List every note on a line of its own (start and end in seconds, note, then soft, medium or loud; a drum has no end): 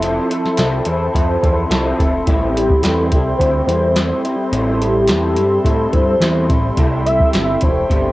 0.00 0.19 F1 medium
0.00 0.65 F3 medium
0.00 0.30 F3 medium
0.00 0.65 C4 medium
0.00 0.30 C4 medium
0.00 0.65 E4 medium
0.00 0.29 E4 medium
0.00 0.66 A4 loud
0.00 2.25 A4 medium
0.00 0.28 A4 medium
0.00 6.74 E5 medium
0.00 2.25 A5 medium
0.00 8.12 C6 medium
0.00 closed hi-hat medium
0.29 0.57 C4 soft
0.29 0.58 E4 soft
0.29 0.58 A4 medium
0.29 0.89 A4 loud
0.29 closed hi-hat medium
0.46 snare soft
0.57 0.81 C2 loud
0.57 0.86 F3 medium
0.57 0.86 C4 medium
0.57 0.86 E4 medium
0.57 0.85 A4 medium
0.57 snare loud
0.57 clap medium
0.57 closed hi-hat medium
0.85 1.09 E2 medium
0.85 1.13 C4 soft
0.85 1.13 E4 medium
0.85 1.14 A4 medium
0.85 1.99 C5 loud
0.85 closed hi-hat medium
1.13 1.37 F2 loud
1.13 1.42 F3 medium
1.13 1.42 C4 medium
1.13 1.42 E4 medium
1.13 1.40 A4 medium
1.13 kick medium
1.13 closed hi-hat loud
1.41 1.66 E2 medium
1.41 2.11 F3 medium
1.41 2.11 C4 medium
1.41 1.70 C4 soft
1.41 1.70 E4 medium
1.41 2.12 E4 medium
1.41 1.70 A4 medium
1.41 2.12 A4 medium
1.41 kick loud
1.41 closed hi-hat medium
1.70 1.93 C2 loud
1.70 1.99 F3 medium
1.70 1.99 C4 loud
1.70 1.98 E4 medium
1.70 1.97 A4 loud
1.70 snare loud
1.70 clap medium
1.70 closed hi-hat medium
1.98 2.22 F1 medium
1.98 2.27 C4 medium
1.98 2.27 E4 medium
1.98 2.27 A4 medium
1.98 kick loud
1.98 closed hi-hat medium
2.26 2.72 A1 loud
2.26 2.55 A2 medium
2.26 3.18 G3 medium
2.26 2.56 G3 medium
2.26 3.18 C4 medium
2.26 2.56 C4 medium
2.26 3.19 E4 medium
2.26 2.54 E4 loud
2.26 8.12 A4 medium
2.26 3.19 A4 medium
2.26 4.50 G5 medium
2.26 kick loud
2.26 closed hi-hat medium
2.55 2.82 G3 soft
2.55 2.84 C4 medium
2.55 2.83 E4 medium
2.55 2.83 G4 medium
2.55 closed hi-hat medium
2.70 kick loud
2.81 3.13 E2 medium
2.81 3.12 A2 medium
2.81 3.12 G3 medium
2.81 3.11 C4 medium
2.81 3.11 E4 medium
2.81 3.38 A4 loud
2.81 snare loud
2.81 clap medium
2.81 closed hi-hat medium
3.12 3.34 C2 medium
3.12 3.39 G3 soft
3.12 3.40 C4 medium
3.12 3.40 E4 medium
3.12 kick loud
3.12 closed hi-hat medium
3.37 3.62 D2 loud
3.37 3.68 A2 medium
3.37 3.68 G3 medium
3.37 3.65 C5 loud
3.37 kick medium
3.41 3.69 C4 medium
3.41 3.67 E4 medium
3.41 closed hi-hat loud
3.65 4.13 E2 medium
3.65 4.36 G3 medium
3.65 4.36 C4 medium
3.65 4.36 E4 medium
3.65 3.95 E4 medium
3.65 4.37 A4 medium
3.65 4.19 C5 loud
3.65 closed hi-hat medium
3.70 3.94 G3 soft
3.70 3.94 C4 medium
3.95 4.24 A2 medium
3.95 4.24 G3 medium
3.95 4.24 C4 medium
3.95 4.23 E4 medium
3.95 snare loud
3.95 clap medium
3.95 closed hi-hat medium
4.24 4.51 G3 soft
4.24 4.52 C4 medium
4.24 4.52 E4 medium
4.24 closed hi-hat medium
4.51 5.10 A1 loud
4.51 4.80 A2 medium
4.51 5.43 G3 medium
4.51 4.81 G3 medium
4.51 5.44 C4 medium
4.51 4.81 C4 medium
4.51 5.44 E4 medium
4.51 4.79 E4 medium
4.51 5.44 A4 loud
4.51 6.76 A5 medium
4.51 closed hi-hat medium
4.80 5.07 G3 soft
4.80 5.09 C4 medium
4.80 5.09 E4 medium
4.80 5.61 G4 medium
4.80 closed hi-hat medium
5.07 5.38 E2 loud
5.07 5.37 A2 medium
5.07 5.37 G3 medium
5.07 5.36 C4 medium
5.07 5.35 E4 medium
5.07 snare loud
5.07 clap medium
5.07 closed hi-hat medium
5.36 5.59 G2 medium
5.36 5.64 G3 soft
5.36 5.64 C4 medium
5.36 5.65 E4 medium
5.36 closed hi-hat medium
5.63 5.93 A2 medium
5.63 5.87 A2 medium
5.63 5.93 G3 medium
5.63 5.93 C4 medium
5.63 5.92 E4 medium
5.63 5.94 A4 loud
5.63 kick medium
5.63 closed hi-hat medium
5.92 6.16 G2 medium
5.92 6.61 G3 medium
5.92 6.20 G3 soft
5.92 6.61 C4 medium
5.92 6.21 C4 soft
5.92 6.61 E4 medium
5.92 6.21 E4 medium
5.92 6.62 A4 medium
5.92 6.49 C5 loud
5.92 kick loud
5.92 closed hi-hat medium
6.20 6.51 E2 medium
6.20 6.50 A2 medium
6.20 6.50 G3 medium
6.20 6.49 C4 medium
6.20 6.48 E4 medium
6.20 snare loud
6.20 clap medium
6.20 closed hi-hat medium
6.49 6.72 A1 medium
6.49 6.77 G3 soft
6.49 6.78 C4 medium
6.49 6.77 E4 medium
6.49 kick loud
6.49 closed hi-hat medium
6.76 7.22 C2 loud
6.76 7.06 C3 medium
6.76 7.68 G3 medium
6.76 7.05 G3 medium
6.76 7.05 A3 medium
6.76 7.69 C4 medium
6.76 7.69 E4 medium
6.76 7.03 E4 medium
6.76 6.85 G4 medium
6.76 8.12 E5 medium
6.76 8.12 G5 medium
6.76 kick loud
6.76 closed hi-hat medium
6.85 7.73 A4 medium
7.04 7.32 G3 medium
7.04 7.33 A3 medium
7.04 7.33 E4 medium
7.04 7.63 E5 loud
7.04 closed hi-hat medium
7.20 kick medium
7.33 7.56 G1 medium
7.33 7.62 C3 medium
7.33 7.62 G3 medium
7.33 7.62 A3 medium
7.33 7.60 E4 medium
7.33 snare loud
7.33 clap medium
7.33 closed hi-hat medium
7.61 7.85 E1 loud
7.61 7.89 G3 soft
7.61 7.89 A3 soft
7.61 7.90 E4 medium
7.61 8.12 C5 loud
7.61 kick medium
7.61 closed hi-hat medium
7.89 8.12 G1 loud
7.89 8.12 C3 medium
7.89 8.12 G3 medium
7.89 8.12 A3 medium
7.89 8.12 E4 medium
7.89 kick medium
7.89 closed hi-hat loud